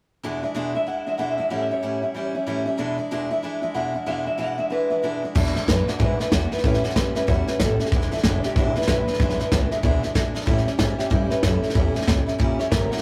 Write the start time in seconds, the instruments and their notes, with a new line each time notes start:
0.23 steel-string acoustic guitar E2 B2 E3 G#3 D4 E4
0.43 steel-string acoustic guitar E3 G#3 D4 E4
0.54 steel-string acoustic guitar E2 B2 E3 G#3 D4 E4
0.75 steel-string acoustic guitar E3 G#3 D4 E4, clean electric guitar E5
0.87 steel-string acoustic guitar E3 G#3 D4 E4, clean electric guitar F#5
0.99 clean electric guitar E5
1.06 steel-string acoustic guitar E3 G#3 D4 E4, clean electric guitar E5
1.18 steel-string acoustic guitar E2 B2 E3 G#3 D4 E4, clean electric guitar F#5
1.30 clean electric guitar E5
1.38 steel-string acoustic guitar E3 G#3 D4 E4, clean electric guitar E5
1.50 steel-string acoustic guitar A2 E3 G3 C#4 E4, clean electric guitar F#5
1.62 clean electric guitar E5
1.71 steel-string acoustic guitar G3 C#4 E4, clean electric guitar C#5
1.83 steel-string acoustic guitar A2 E3 G3 C#4 E4
2.02 steel-string acoustic guitar G3 C#4 E4
2.15 steel-string acoustic guitar E3 G3 C#4 E4
2.35 steel-string acoustic guitar G3 C#4 E4
2.47 steel-string acoustic guitar A2 E3 G3 C#4 E4
2.66 steel-string acoustic guitar G3 C#4 E4
2.77 steel-string acoustic guitar E2 B2 E3 G#3 D4 E4
2.98 steel-string acoustic guitar E3 G#3 D4 E4
3.11 steel-string acoustic guitar E2 B2 E3 G#3 D4 E4
3.31 steel-string acoustic guitar E3 G#3 D4 E4
3.43 steel-string acoustic guitar E3 G#3 D4 E4
3.62 steel-string acoustic guitar E3 G#3 D4 E4
3.74 steel-string acoustic guitar E2 B2 E3 G#3 D4 E4, clean electric guitar F#5
3.94 steel-string acoustic guitar E3 G#3 D4 E4, clean electric guitar E5
4.06 steel-string acoustic guitar E2 B2 E3 G#3 D4 E4, clean electric guitar F#5
4.26 steel-string acoustic guitar E3 G#3 D4 E4, clean electric guitar E5
4.38 steel-string acoustic guitar E2 B2 E3 G#3 D4 E4, clean electric guitar F#5
4.58 steel-string acoustic guitar E3 G#3 D4 E4, clean electric guitar E5
4.70 steel-string acoustic guitar E3 G#3 D4 E4, clean electric guitar B4
4.90 steel-string acoustic guitar E3 G#3 D4 E4
5.03 steel-string acoustic guitar E2 B2 E3 G#3 D4 E4
5.23 steel-string acoustic guitar E3 G#3 D4 E4
5.35 steel-string acoustic guitar E2 B2 E3 G#3 D4 E4, upright bass E2, kick, snare, crash
5.46 snare
5.54 steel-string acoustic guitar E3 G#3 D4 E4, muted upright bass stroke, snare
5.66 upright bass F#2, steel-string acoustic guitar E3 G#3 D4 E4, clean electric guitar B4, kick, snare, hi-hat pedal
5.87 steel-string acoustic guitar E3 G#3 D4 E4, clean electric guitar F#4, muted upright bass stroke, snare
5.99 steel-string acoustic guitar E2 B2 E3 G#3 D4 E4, upright bass G#2, clean electric guitar B4, kick, snare
6.19 steel-string acoustic guitar E3 G#3 D4 E4, clean electric guitar B4, muted upright bass stroke, snare
6.30 upright bass E2, steel-string acoustic guitar E3 G#3 D4 E4, clean electric guitar F#4, kick, snare, hi-hat pedal
6.51 steel-string acoustic guitar E3 G#3 D4 E4, clean electric guitar B4, muted upright bass stroke, snare
6.58 snare
6.64 upright bass A2, steel-string acoustic guitar A2 E3 G3 C#4 E4, clean electric guitar B4, kick, snare
6.74 snare
6.84 steel-string acoustic guitar G3 C#4 E4, clean electric guitar F#4, snare
6.90 snare
6.95 steel-string acoustic guitar E3 G3 C#4 E4, clean electric guitar B4, kick, snare, hi-hat pedal
7.15 steel-string acoustic guitar G3 C#4 E4, clean electric guitar B4, muted upright bass stroke, snare
7.27 upright bass E2, steel-string acoustic guitar A2 E3 G3 C#4 E4, clean electric guitar F#4, kick, snare
7.47 steel-string acoustic guitar G3 C#4 E4, clean electric guitar B4, muted upright bass stroke, snare
7.60 upright bass A1, steel-string acoustic guitar E3 G3 C#4 E4, clean electric guitar A4, kick, snare, hi-hat pedal
7.79 steel-string acoustic guitar G3 C#4 E4, muted upright bass stroke, snare
7.86 snare
7.92 upright bass E1, steel-string acoustic guitar E2 B2 E3 G#3 D4 E4, kick, snare
8.02 snare
8.11 steel-string acoustic guitar E3 G#3 D4 E4, snare
8.17 snare
8.24 upright bass F#1, steel-string acoustic guitar E3 G#3 D4 E4, kick, snare, hi-hat pedal
8.43 steel-string acoustic guitar E3 G#3 D4 E4, clean electric guitar G4, muted upright bass stroke, snare
8.55 upright bass G#1, steel-string acoustic guitar E2 B2 E3 G#3 D4 E4, clean electric guitar E4, kick, snare
8.76 steel-string acoustic guitar E3 G#3 D4 E4, clean electric guitar B4, muted upright bass stroke, snare
8.82 snare
8.88 upright bass A#1, steel-string acoustic guitar E3 G#3 D4 E4, clean electric guitar B4, kick, snare, hi-hat pedal
9.08 steel-string acoustic guitar E3 G#3 D4 E4, muted upright bass stroke, snare
9.14 snare
9.19 upright bass B1, steel-string acoustic guitar E2 B2 E3 G#3 D4 E4, kick, snare
9.30 snare
9.40 steel-string acoustic guitar E3 G#3 D4 E4, muted upright bass stroke, snare
9.52 upright bass C#2, steel-string acoustic guitar E3 G#3 D4 E4, kick, snare, hi-hat pedal
9.71 steel-string acoustic guitar E3 G#3 D4 E4, snare
9.83 upright bass D2, steel-string acoustic guitar E2 B2 E3 G#3 D4 E4, kick, snare
10.03 steel-string acoustic guitar E3 G#3 D4 E4, snare
10.14 steel-string acoustic guitar E3 G#3 D4 E4, kick, snare, hi-hat pedal
10.34 steel-string acoustic guitar E3 G#3 D4 E4, snare
10.41 snare
10.46 steel-string acoustic guitar A2 E3 G3 C#4 E4, upright bass A2, kick, snare
10.58 snare
10.65 steel-string acoustic guitar G3 C#4 E4, muted upright bass stroke, snare
10.78 upright bass G#2, steel-string acoustic guitar E3 G3 C#4 E4, kick, snare, hi-hat pedal
10.98 steel-string acoustic guitar G3 C#4 E4, clean electric guitar G4, muted upright bass stroke, snare
11.10 upright bass G2, steel-string acoustic guitar A2 E3 G3 C#4 E4, clean electric guitar E4, kick, snare
11.30 steel-string acoustic guitar G3 C#4 E4, clean electric guitar B4, muted upright bass stroke, snare
11.43 upright bass F#2, steel-string acoustic guitar E3 G3 C#4 E4, clean electric guitar A4, kick, snare, hi-hat pedal
11.62 steel-string acoustic guitar G3 C#4 E4, muted upright bass stroke, snare
11.70 snare
11.74 upright bass E2, steel-string acoustic guitar A#2 E3 G3 C#4 E4, kick, snare
11.94 steel-string acoustic guitar G3 C#4 E4, snare
12.02 snare
12.06 upright bass C#2, steel-string acoustic guitar E3 G3 C#4 E4, kick, snare, hi-hat pedal
12.27 steel-string acoustic guitar G3 C#4 E4, muted upright bass stroke, snare
12.38 steel-string acoustic guitar A#2 E3 G3 C#4 E4, kick, snare
12.59 steel-string acoustic guitar G3 C#4 E4, clean electric guitar C#5, snare
12.71 upright bass G1, steel-string acoustic guitar E3 G3 C#4 E4, clean electric guitar A#4, kick, snare, hi-hat pedal
12.91 steel-string acoustic guitar G3 C#4 E4, clean electric guitar F#4, muted upright bass stroke, snare
12.97 snare